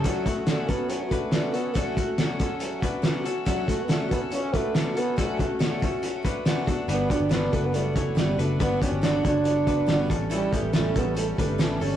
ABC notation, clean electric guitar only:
X:1
M:4/4
L:1/8
Q:1/4=140
K:D
V:1 name="Clean electric guitar"
[CA] [A,F] [CA] [CA]2 [DB]2 [CA] | [CA] [A,F] [CA] [CA]2 [DB]2 [CA] | [CA] [A,F] [CA] [CA]2 [DB]2 [CA] | [CA] [A,F] [CA] [CA]2 [DB]2 [DA] |
[DB] [B,G] [DB] [DB]2 [Ec]2 [DB] | [DB] [B,G] [DA] [Ac]2 [DB]2 [CA] | [CA] [B,G] [CA] [CA]2 [DB]2 [CA] |]